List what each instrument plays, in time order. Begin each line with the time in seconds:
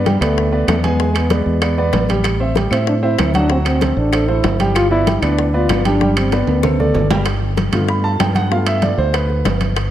Already playing: fingered electric bass G2
0.06 grand piano G3 G4 G5, trombone G3, high bongo, high conga, high timbale, low timbale
0.20 fingered electric bass D2, trombone A3, grand piano B3 B4 D5, high timbale, claves
0.38 high bongo, high conga
0.52 grand piano B3 B4 D5, high conga
0.67 fingered electric bass E2, trombone A3, high bongo, low bongo, high conga, high timbale, low timbale, claves
0.84 grand piano G#3 G#4 G#5, trombone B3, high conga, high timbale
0.99 grand piano G#3 G#4 G#5, high bongo, high conga
1.13 trombone A3 B3, high bongo, high conga, high timbale, claves
1.30 trombone G#3, grand piano B3 B4 D5, high bongo, high conga, high timbale, low timbale
1.46 fingered electric bass E2
1.62 grand piano B3 B4 D5, high bongo, high conga, high timbale, claves
1.78 grand piano B3 B4 D5, high bongo, high conga
1.93 fingered electric bass A1, high bongo, low bongo, high conga, high timbale, low timbale
2.09 grand piano G3 G4 G5, high bongo, high conga, high timbale
2.24 high bongo, high timbale, claves
2.40 grand piano C4 C5 E5, high conga
2.55 grand piano G3 G4 G5, high bongo, high conga, high timbale, low timbale
2.71 fingered electric bass A2, grand piano C4 C5 E5, trombone C4, high conga, high timbale, claves
2.87 trombone D4, high bongo, high conga
3.03 grand piano C4 C5 E5, trombone E4, high conga
3.19 fingered electric bass D2, high bongo, low bongo, high conga, high timbale, low timbale, claves
3.34 grand piano F#3 F#4 F#5, trombone D4, high conga, high timbale
3.50 grand piano F#3 F#4 F#5, trombone C4, high bongo
3.65 trombone C4, high bongo, high conga, high timbale, claves
3.81 grand piano A3 A4 C5, high bongo, high conga, high timbale, low timbale
3.96 fingered electric bass A1, trombone D4
4.12 grand piano A3 A4 C5, high bongo, high conga, high timbale, claves
4.28 grand piano A3 A4 C5, trombone E4, high bongo, high conga
4.43 fingered electric bass G1, high bongo, low bongo, high conga, high timbale, low timbale
4.59 grand piano G3 G4 G5, high bongo, high conga, high timbale
4.75 trombone F4, high bongo, high conga, high timbale, claves
4.91 grand piano B3 B4 D5, trombone E4, high conga
5.06 grand piano G3 G4 G5, high bongo, high conga, high timbale, low timbale
5.22 fingered electric bass D2, grand piano B3 B4 D5, trombone D4, high conga, high timbale, claves
5.39 high bongo, high conga
5.54 grand piano B3 B4 D5, trombone F4, high conga
5.68 fingered electric bass G1, high bongo, low bongo, high conga, high timbale, low timbale, claves
5.85 grand piano G3 G4 G5, trombone D4, high conga, high timbale
6.01 grand piano G3 G4 G5, high bongo, high conga
6.17 trombone C4, high bongo, high timbale, claves
6.32 grand piano B3 B4 D5, trombone B3, high bongo, low conga, high timbale, low timbale
6.47 fingered electric bass D2, high timbale
6.63 grand piano A3 A4 C5, high bongo, low conga, high timbale, claves
6.79 grand piano A3 A4 D5, low conga
6.94 fingered electric bass G1, low conga, low timbale
7.11 grand piano G3 G4 G5, low bongo, low conga, low timbale
7.26 high bongo, high conga, high timbale
7.42 high conga
7.57 high bongo, high conga, high timbale, low timbale
7.72 fingered electric bass G2, grand piano A3 B3 F4, high conga, low conga, high timbale
7.89 grand piano B5, high bongo
8.04 grand piano A5, high conga
8.20 fingered electric bass G2, grand piano G5, high bongo, low bongo, high conga, high timbale, low timbale
8.35 grand piano F#5, high conga, high timbale
8.50 grand piano A3 B3 F4 F5, high bongo, high conga
8.66 grand piano E5, high bongo, high conga, high timbale
8.82 grand piano D5, high bongo, high conga, high timbale, low timbale
8.98 fingered electric bass D2, grand piano C5
9.14 grand piano B4, high bongo, high conga, high timbale
9.29 high bongo, high conga
9.45 fingered electric bass G1, high bongo, low bongo, high conga, high timbale, low timbale
9.61 high bongo, high conga, high timbale
9.76 high bongo, high conga, high timbale